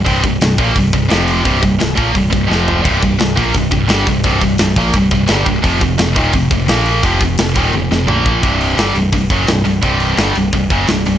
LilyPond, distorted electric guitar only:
\new Staff \with { instrumentName = "Distorted electric guitar" } { \clef bass \time 4/4 \key c \minor \tempo 4 = 172 <c, g, c>8 <c, g,>8 <c, g,>8 <bes, f bes>8 <c, g,>8 <c, g,>8 <f, c f>4 | <c, g, c>8 <c, g,>8 <c, g,>8 <bes, f bes>8 <c, g,>8 <c, g,>8 <f, c f>4 | <c, g, c>8 <c, g,>8 <c, g,>8 <bes, f bes>8 <c, g,>8 <c, g,>8 <g, d g>8 <c, g,>8 | <c, g, c>8 <c, g,>8 <c, g,>8 <bes, f bes>8 <c, g,>8 <c, g,>8 <g, d g>8 <c, g,>8 |
<f, c f>8 <f, c>8 <f, c>8 <ees, bes, ees>8 <f, c>8 <f, c>8 <bes, f bes>4 | <f, c f>8 <f, c>8 <f, c>8 <ees, bes, ees>8 <f, c>8 <f, c>8 <bes, f bes>4 | <c, g, c>4 <g, d g>8 <c, g,>8 <c, g,>8 <fis, des fis>8 <c, g,>8 <c, g,>8 | <c, g, c>4 <g, d g>8 <c, g,>8 <c, g,>8 <fis, des fis>8 <c, g,>8 <c, g,>8 | }